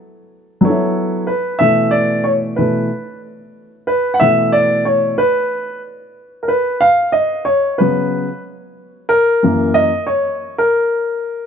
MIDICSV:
0, 0, Header, 1, 2, 480
1, 0, Start_track
1, 0, Tempo, 652174
1, 1183, Time_signature, 4, 2, 24, 8
1, 8438, End_track
2, 0, Start_track
2, 0, Title_t, "Grand piano"
2, 0, Program_c, 0, 0
2, 448, Note_on_c, 0, 54, 76
2, 456, Note_on_c, 0, 59, 70
2, 462, Note_on_c, 0, 62, 56
2, 469, Note_on_c, 0, 69, 70
2, 477, Note_on_c, 0, 73, 87
2, 511, Note_on_c, 0, 64, 75
2, 519, Note_off_c, 0, 62, 0
2, 933, Note_on_c, 0, 71, 78
2, 937, Note_off_c, 0, 54, 0
2, 941, Note_off_c, 0, 59, 0
2, 947, Note_off_c, 0, 69, 0
2, 951, Note_off_c, 0, 73, 0
2, 968, Note_off_c, 0, 64, 0
2, 1161, Note_off_c, 0, 71, 0
2, 1168, Note_on_c, 0, 76, 102
2, 1177, Note_on_c, 0, 47, 52
2, 1183, Note_on_c, 0, 52, 47
2, 1186, Note_on_c, 0, 57, 61
2, 1405, Note_on_c, 0, 74, 93
2, 1423, Note_off_c, 0, 76, 0
2, 1637, Note_off_c, 0, 74, 0
2, 1648, Note_on_c, 0, 73, 82
2, 1703, Note_off_c, 0, 73, 0
2, 1871, Note_off_c, 0, 47, 0
2, 1874, Note_off_c, 0, 52, 0
2, 1875, Note_off_c, 0, 57, 0
2, 1886, Note_on_c, 0, 71, 66
2, 1900, Note_on_c, 0, 47, 43
2, 1901, Note_on_c, 0, 52, 41
2, 1905, Note_on_c, 0, 57, 49
2, 2117, Note_off_c, 0, 47, 0
2, 2118, Note_off_c, 0, 52, 0
2, 2120, Note_off_c, 0, 57, 0
2, 2345, Note_off_c, 0, 71, 0
2, 2849, Note_on_c, 0, 71, 82
2, 3046, Note_on_c, 0, 78, 77
2, 3059, Note_off_c, 0, 71, 0
2, 3089, Note_on_c, 0, 76, 103
2, 3096, Note_off_c, 0, 78, 0
2, 3096, Note_on_c, 0, 47, 54
2, 3100, Note_on_c, 0, 52, 48
2, 3105, Note_on_c, 0, 57, 51
2, 3330, Note_on_c, 0, 74, 93
2, 3344, Note_off_c, 0, 76, 0
2, 3559, Note_off_c, 0, 74, 0
2, 3572, Note_on_c, 0, 73, 84
2, 3790, Note_off_c, 0, 47, 0
2, 3792, Note_off_c, 0, 52, 0
2, 3795, Note_off_c, 0, 57, 0
2, 3812, Note_on_c, 0, 71, 87
2, 3825, Note_off_c, 0, 73, 0
2, 4268, Note_off_c, 0, 71, 0
2, 4730, Note_on_c, 0, 70, 63
2, 4771, Note_on_c, 0, 71, 80
2, 4778, Note_off_c, 0, 70, 0
2, 5009, Note_on_c, 0, 77, 105
2, 5024, Note_off_c, 0, 71, 0
2, 5243, Note_on_c, 0, 75, 84
2, 5264, Note_off_c, 0, 77, 0
2, 5483, Note_on_c, 0, 73, 92
2, 5501, Note_off_c, 0, 75, 0
2, 5727, Note_on_c, 0, 71, 82
2, 5740, Note_on_c, 0, 49, 50
2, 5741, Note_off_c, 0, 73, 0
2, 5745, Note_on_c, 0, 54, 48
2, 5748, Note_on_c, 0, 59, 63
2, 6076, Note_off_c, 0, 49, 0
2, 6079, Note_off_c, 0, 54, 0
2, 6080, Note_off_c, 0, 59, 0
2, 6186, Note_off_c, 0, 71, 0
2, 6689, Note_on_c, 0, 70, 98
2, 6940, Note_on_c, 0, 42, 57
2, 6944, Note_on_c, 0, 52, 47
2, 6951, Note_on_c, 0, 58, 65
2, 7170, Note_on_c, 0, 75, 98
2, 7191, Note_off_c, 0, 70, 0
2, 7276, Note_off_c, 0, 42, 0
2, 7279, Note_off_c, 0, 52, 0
2, 7282, Note_off_c, 0, 58, 0
2, 7408, Note_on_c, 0, 73, 88
2, 7424, Note_off_c, 0, 75, 0
2, 7769, Note_off_c, 0, 73, 0
2, 7790, Note_on_c, 0, 70, 90
2, 8438, Note_off_c, 0, 70, 0
2, 8438, End_track
0, 0, End_of_file